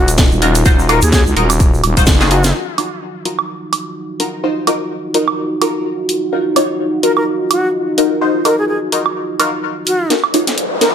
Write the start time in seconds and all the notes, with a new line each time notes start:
Already playing: D#1 D#4 F4 F#4
0.08 closed hi-hat, shaker
0.18 kick, snare, closed hi-hat, shaker
0.31 D#1, shaker
0.42 D#4 F4 F#4 A#4, open hi-hat
0.55 closed hi-hat, shaker
0.65 D#1 D#4 F4 F#4 C5, kick, closed hi-hat, shaker
0.79 shaker
0.89 D#4 F4 F#4 A#4, open hi-hat, high woodblock
1.02 D#2 G#4, closed hi-hat, shaker
1.12 G#4, kick, snare, closed hi-hat, shaker
1.26 C#2, shaker
1.36 D#1 D#4 F4 F#4 A#4, open hi-hat
1.50 closed hi-hat, high woodblock, shaker
1.60 kick, closed hi-hat, shaker
1.74 shaker
1.84 D#1, open hi-hat, high woodblock
1.97 D#1 D#4 F4 F#4 C5, kick, closed hi-hat, shaker
2.07 F#1, kick, snare, closed hi-hat, shaker
2.21 D#4 F4 F#4 G#4, snare, shaker
2.31 D#4 F4 F#4 G#4, open hi-hat
2.44 snare, closed hi-hat, shaker
2.54 D#4 F4 F#4 A#4
2.78 D#4 F4 F#4 C#5, open hi-hat, high woodblock
3.25 D#4 F4 F#4 A#4, open hi-hat
3.39 high woodblock
3.73 open hi-hat, high woodblock
4.20 D#4 F4 F#4 A#4, open hi-hat
4.43 D#4 F4 F#4 C5
4.67 D#4 F4 F#4 A#4, open hi-hat, high woodblock
5.14 D#4 F4 F#4 A#4, open hi-hat
5.28 high woodblock
5.62 D#4 F4 F#4 A#4, open hi-hat, high woodblock
6.09 open hi-hat
6.32 D#4 F4 F#4 A#4
6.56 D#4 F4 F#4 C#5, open hi-hat, high woodblock
7.03 D#4 F4 F#4 A#4, open hi-hat
7.17 A#4, high woodblock
7.50 F#4, open hi-hat, high woodblock
7.98 D#4 F4 F#4 A#4, open hi-hat
8.21 D#4 F4 F#4 C5
8.45 D#4 F4 F#4 A#4, open hi-hat, high woodblock
8.58 G#4
8.69 G#4
8.92 D#4 F4 F#4 A#4, open hi-hat
9.06 high woodblock
9.40 D#4 F4 F#4 A#4, open hi-hat, high woodblock
9.87 F#4, open hi-hat
10.10 D#4 F4 F#4 A#4, snare, closed hi-hat, riser
10.24 high woodblock
10.34 D#4 F4 F#4 C#5, open hi-hat
10.47 snare, closed hi-hat
10.58 closed hi-hat
10.81 D#4 F4 F#4 A#4, snare, open hi-hat